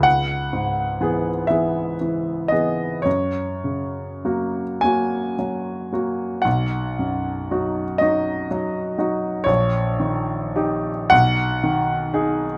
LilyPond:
<<
  \new Staff \with { instrumentName = "Grand piano" } { \time 12/8 \key b \major \tempo 4. = 38 fis''4. e''4 dis''8 cis''4. gis''4. | fis''4. dis''4. cis''4. fis''4. | }
  \new Staff \with { instrumentName = "Grand piano" } { \clef bass \time 12/8 \key b \major cis,8 gis,8 <e b gis'>8 <e b gis'>8 e8 <e b gis'>8 fis,8 cis8 <fis ais fis'>8 <fis ais fis'>8 fis8 <fis ais fis'>8 | b,,8 fis,8 <fis dis' fis'>8 <fis dis' fis'>8 fis8 <fis dis' fis'>8 ais,,8 dis8 <dis' g'>8 b,,8 dis8 <dis' gis'>8 | }
>>